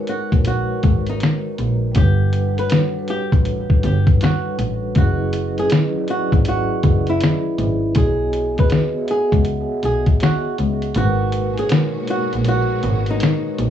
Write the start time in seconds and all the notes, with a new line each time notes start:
Already playing: G#3 D#4 F#4 B4
0.00 A#4 C#5
0.07 F#4, closed hi-hat
0.32 A#1, kick, closed hi-hat
0.45 F#4, closed hi-hat
0.83 G#1, kick, closed hi-hat
1.07 D#4, closed hi-hat
1.20 finger snap, snare, closed hi-hat
1.58 A#1, closed hi-hat
1.92 G3 D4 A4 F#5, closed hi-hat
1.96 G1 G4 B4, kick
2.33 closed hi-hat
2.54 G3 D4 F#4 A4
2.58 B4 C#5, closed hi-hat
2.70 finger snap, snare, closed hi-hat
2.93 G3 D4 F#4
2.97 A4 B4
3.08 G4, closed hi-hat
3.32 A1, kick, closed hi-hat
3.45 closed hi-hat
3.70 kick
3.83 G1 G4, closed hi-hat
4.07 kick, closed hi-hat
4.21 F#4, finger snap, snare, closed hi-hat
4.59 A1, closed hi-hat
4.95 F#1 F#3 C#4 E4 F#4 G#4, kick, closed hi-hat
5.00 B4 D#5
5.33 closed hi-hat
5.57 F#3 C#4 E4 G#4, closed hi-hat
5.62 B4 D#5
5.70 finger snap, snare, closed hi-hat
5.93 F#3 C#4 E4 G#4
5.98 B4 D5
6.05 D#5, closed hi-hat
6.10 F#4
6.32 G#1, kick, closed hi-hat
6.45 F#4, closed hi-hat
6.83 F#1, kick, closed hi-hat
7.07 E4, closed hi-hat
7.21 finger snap, snare, closed hi-hat
7.58 G#1, closed hi-hat
7.94 B1 B3 F#4 G#4, kick, closed hi-hat
7.99 C#5 D#5
8.33 closed hi-hat
8.53 B3 F#4 G#4
8.57 B4 C#5 D#5, kick, closed hi-hat
8.70 finger snap, snare, closed hi-hat
8.94 B3 F#4 G#4 C#5
9.00 E5
9.06 F#5, closed hi-hat
9.11 G#4
9.32 C#2, kick, closed hi-hat
9.45 closed hi-hat
9.83 B1 G#4, closed hi-hat
10.06 kick, closed hi-hat
10.20 F#4, finger snap, snare, closed hi-hat
10.58 C#2, closed hi-hat
10.82 closed hi-hat
10.94 G#1 A#2 B2 G#3 D#4 F#4, closed hi-hat
10.99 A#4 B4
11.32 closed hi-hat
11.53 G#3 D#4 F#4
11.58 G#4 A#4 C#5, closed hi-hat
11.69 finger snap, snare, closed hi-hat
11.94 G#3 D#4 F#4 A#4
11.99 C#5
12.08 F#4, closed hi-hat
12.33 A#1, closed hi-hat
12.45 F#4, closed hi-hat
12.83 G#1, closed hi-hat
13.06 closed hi-hat
13.10 D#4
13.20 finger snap, snare, closed hi-hat
13.59 A#1, closed hi-hat